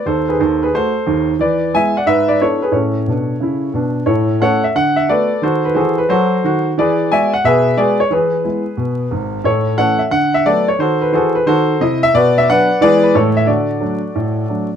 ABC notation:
X:1
M:4/4
L:1/8
Q:"Swing" 1/4=179
K:A
V:1 name="Grand piano"
[A^B] [G=B] [A^B] [G=B] [A^B]3 z | [Bd]2 [eg] [df] [Be] [Bd] [Ac] [GB] | [Ac]6 z2 | [EAc]2 [Acf] e f e [ABd]2 |
[FA^B] =B [FA^B] =B [FA^B]3 z | [GBd]2 [deg] f [GBe]2 [GBd] c | [EGB]6 z2 | [EAc]2 [Acf] e f e [ABd] c |
[FA^B] =B [FA^B] =B [FA^B]2 ^d e | [K:D] [FBd] e [Bdf]2 [^GBd] B [EAc] e | [FAd]6- [FAd] z |]
V:2 name="Grand piano" clef=bass
[^D,,^D,]2 [D,,D,]2 [A,F]2 [D,,D,]2 | E,2 [G,B,E]2 G,,2 [B,DE]2 | [A,,C]2 [B,,D]2 [C,E]2 [B,,D]2 | A,,2 [A,CE]2 D,2 [A,B,F]2 |
^D,2 [E,G]2 F,2 [D,F]2 | E,2 [G,B,F]2 B,,2 [G,B,F]2 | E,2 [G,B,E]2 B,,2 [G,,,G,,]2 | A,,2 [E,A,C]2 D,2 [F,A,B,]2 |
^D,2 [E,G]2 D,2 [^B,,E]2 | [K:D] B,,2 [F,B,D]2 [E,^G,B,E]2 [A,,E,A,]2 | D,2 [F,A,D]2 A,,2 [F,A,D]2 |]